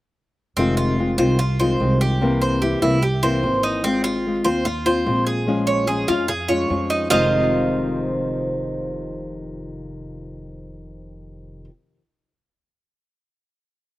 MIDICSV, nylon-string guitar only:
0, 0, Header, 1, 3, 480
1, 0, Start_track
1, 0, Key_signature, -4, "minor"
1, 0, Tempo, 410116
1, 666, Time_signature, 4, 2, 24, 8
1, 16365, End_track
2, 0, Start_track
2, 0, Title_t, "Nylon-string guitar"
2, 0, Program_c, 0, 24
2, 673, Note_on_c, 0, 48, 62
2, 684, Note_on_c, 0, 51, 62
2, 688, Note_on_c, 0, 56, 62
2, 691, Note_on_c, 0, 60, 53
2, 699, Note_on_c, 0, 65, 68
2, 1139, Note_off_c, 0, 51, 0
2, 1140, Note_off_c, 0, 48, 0
2, 1144, Note_off_c, 0, 56, 0
2, 1149, Note_off_c, 0, 60, 0
2, 1153, Note_off_c, 0, 65, 0
2, 1153, Note_on_c, 0, 51, 43
2, 1158, Note_on_c, 0, 56, 44
2, 1167, Note_on_c, 0, 60, 51
2, 1175, Note_on_c, 0, 65, 46
2, 1378, Note_off_c, 0, 65, 0
2, 1379, Note_off_c, 0, 51, 0
2, 1382, Note_off_c, 0, 56, 0
2, 1387, Note_off_c, 0, 60, 0
2, 1392, Note_on_c, 0, 65, 69
2, 1401, Note_on_c, 0, 60, 66
2, 1406, Note_on_c, 0, 56, 58
2, 1417, Note_on_c, 0, 51, 56
2, 1619, Note_off_c, 0, 65, 0
2, 1623, Note_off_c, 0, 60, 0
2, 1624, Note_off_c, 0, 51, 0
2, 1626, Note_off_c, 0, 56, 0
2, 1877, Note_on_c, 0, 65, 66
2, 1878, Note_on_c, 0, 60, 71
2, 1891, Note_on_c, 0, 56, 54
2, 1897, Note_on_c, 0, 51, 51
2, 2093, Note_off_c, 0, 51, 0
2, 2097, Note_off_c, 0, 56, 0
2, 2101, Note_off_c, 0, 60, 0
2, 2101, Note_off_c, 0, 65, 0
2, 2107, Note_on_c, 0, 51, 43
2, 2111, Note_on_c, 0, 56, 49
2, 2127, Note_on_c, 0, 60, 47
2, 2130, Note_on_c, 0, 65, 55
2, 2575, Note_off_c, 0, 51, 0
2, 2577, Note_off_c, 0, 56, 0
2, 2584, Note_on_c, 0, 48, 71
2, 2585, Note_off_c, 0, 60, 0
2, 2586, Note_off_c, 0, 65, 0
2, 2590, Note_on_c, 0, 52, 58
2, 2601, Note_on_c, 0, 58, 72
2, 2603, Note_on_c, 0, 60, 64
2, 2607, Note_on_c, 0, 64, 62
2, 3045, Note_off_c, 0, 52, 0
2, 3053, Note_off_c, 0, 48, 0
2, 3057, Note_off_c, 0, 58, 0
2, 3059, Note_on_c, 0, 52, 48
2, 3062, Note_off_c, 0, 60, 0
2, 3064, Note_off_c, 0, 64, 0
2, 3071, Note_on_c, 0, 58, 46
2, 3078, Note_on_c, 0, 60, 42
2, 3082, Note_on_c, 0, 64, 57
2, 3284, Note_off_c, 0, 60, 0
2, 3284, Note_off_c, 0, 64, 0
2, 3290, Note_off_c, 0, 52, 0
2, 3296, Note_off_c, 0, 58, 0
2, 3298, Note_on_c, 0, 64, 59
2, 3299, Note_on_c, 0, 60, 64
2, 3309, Note_on_c, 0, 58, 62
2, 3320, Note_on_c, 0, 52, 60
2, 3512, Note_off_c, 0, 52, 0
2, 3517, Note_off_c, 0, 60, 0
2, 3519, Note_off_c, 0, 58, 0
2, 3520, Note_off_c, 0, 64, 0
2, 3777, Note_on_c, 0, 64, 68
2, 3789, Note_on_c, 0, 60, 59
2, 3796, Note_on_c, 0, 58, 62
2, 3801, Note_on_c, 0, 52, 51
2, 4008, Note_off_c, 0, 64, 0
2, 4012, Note_off_c, 0, 52, 0
2, 4013, Note_off_c, 0, 60, 0
2, 4017, Note_off_c, 0, 58, 0
2, 4026, Note_on_c, 0, 52, 47
2, 4032, Note_on_c, 0, 58, 46
2, 4039, Note_on_c, 0, 60, 55
2, 4045, Note_on_c, 0, 64, 51
2, 4490, Note_off_c, 0, 52, 0
2, 4491, Note_off_c, 0, 58, 0
2, 4496, Note_on_c, 0, 56, 61
2, 4497, Note_off_c, 0, 60, 0
2, 4500, Note_off_c, 0, 64, 0
2, 4510, Note_on_c, 0, 60, 69
2, 4525, Note_on_c, 0, 65, 78
2, 4964, Note_off_c, 0, 56, 0
2, 4972, Note_off_c, 0, 60, 0
2, 4979, Note_off_c, 0, 65, 0
2, 4990, Note_on_c, 0, 56, 45
2, 5004, Note_on_c, 0, 60, 43
2, 5010, Note_on_c, 0, 65, 53
2, 5191, Note_off_c, 0, 65, 0
2, 5205, Note_on_c, 0, 65, 67
2, 5212, Note_off_c, 0, 56, 0
2, 5215, Note_off_c, 0, 60, 0
2, 5229, Note_on_c, 0, 60, 57
2, 5439, Note_off_c, 0, 65, 0
2, 5444, Note_off_c, 0, 60, 0
2, 5689, Note_on_c, 0, 65, 65
2, 5706, Note_on_c, 0, 60, 59
2, 5918, Note_off_c, 0, 60, 0
2, 5920, Note_off_c, 0, 65, 0
2, 5920, Note_on_c, 0, 56, 52
2, 5932, Note_on_c, 0, 60, 56
2, 5941, Note_on_c, 0, 65, 55
2, 6394, Note_off_c, 0, 56, 0
2, 6395, Note_on_c, 0, 53, 59
2, 6400, Note_off_c, 0, 60, 0
2, 6405, Note_off_c, 0, 65, 0
2, 6408, Note_on_c, 0, 56, 66
2, 6415, Note_on_c, 0, 61, 77
2, 6420, Note_on_c, 0, 65, 68
2, 6851, Note_off_c, 0, 53, 0
2, 6863, Note_off_c, 0, 56, 0
2, 6865, Note_on_c, 0, 53, 49
2, 6869, Note_off_c, 0, 61, 0
2, 6877, Note_on_c, 0, 56, 46
2, 6879, Note_off_c, 0, 65, 0
2, 6883, Note_on_c, 0, 61, 55
2, 6893, Note_on_c, 0, 65, 53
2, 7106, Note_off_c, 0, 53, 0
2, 7107, Note_off_c, 0, 65, 0
2, 7113, Note_off_c, 0, 56, 0
2, 7115, Note_off_c, 0, 61, 0
2, 7121, Note_on_c, 0, 65, 72
2, 7134, Note_on_c, 0, 61, 68
2, 7139, Note_on_c, 0, 56, 57
2, 7343, Note_off_c, 0, 56, 0
2, 7350, Note_off_c, 0, 65, 0
2, 7352, Note_off_c, 0, 61, 0
2, 7592, Note_on_c, 0, 65, 76
2, 7605, Note_on_c, 0, 61, 61
2, 7617, Note_on_c, 0, 56, 53
2, 7818, Note_off_c, 0, 56, 0
2, 7821, Note_on_c, 0, 53, 52
2, 7830, Note_off_c, 0, 65, 0
2, 7831, Note_off_c, 0, 61, 0
2, 7832, Note_on_c, 0, 56, 47
2, 7845, Note_on_c, 0, 61, 55
2, 7849, Note_on_c, 0, 65, 48
2, 8304, Note_off_c, 0, 53, 0
2, 8310, Note_off_c, 0, 56, 0
2, 8311, Note_on_c, 0, 41, 64
2, 8316, Note_off_c, 0, 61, 0
2, 8318, Note_off_c, 0, 65, 0
2, 8322, Note_on_c, 0, 48, 61
2, 8326, Note_on_c, 0, 51, 73
2, 8335, Note_on_c, 0, 56, 64
2, 8337, Note_on_c, 0, 60, 73
2, 8342, Note_on_c, 0, 65, 71
2, 13668, Note_off_c, 0, 41, 0
2, 13679, Note_off_c, 0, 48, 0
2, 13683, Note_off_c, 0, 51, 0
2, 13692, Note_off_c, 0, 56, 0
2, 13694, Note_off_c, 0, 60, 0
2, 13699, Note_off_c, 0, 65, 0
2, 16365, End_track
3, 0, Start_track
3, 0, Title_t, "Muted nylon-string guitar strokes"
3, 1635, Note_on_c, 9, 29, 55
3, 1752, Note_off_c, 9, 29, 0
3, 3522, Note_on_c, 9, 29, 59
3, 3639, Note_off_c, 9, 29, 0
3, 5446, Note_on_c, 9, 29, 60
3, 5563, Note_off_c, 9, 29, 0
3, 7356, Note_on_c, 9, 29, 58
3, 7473, Note_off_c, 9, 29, 0
3, 16365, End_track
0, 0, End_of_file